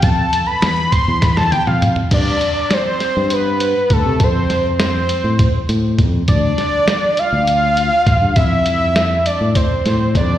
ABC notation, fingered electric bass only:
X:1
M:7/8
L:1/16
Q:1/4=101
K:Flyd
V:1 name="Fingered electric bass" clef=bass
F,,2 z2 E,,2 z E,,4 F,,3 | G,,2 z4 z G,,4- G,, D,, C, | F,,6- F,, A,,2 z A,,2 F,,2 | D,,2 z4 z D,,4- D,, A,,, G,, |
F,,6- F,, A,,2 z A,,2 F,,2 |]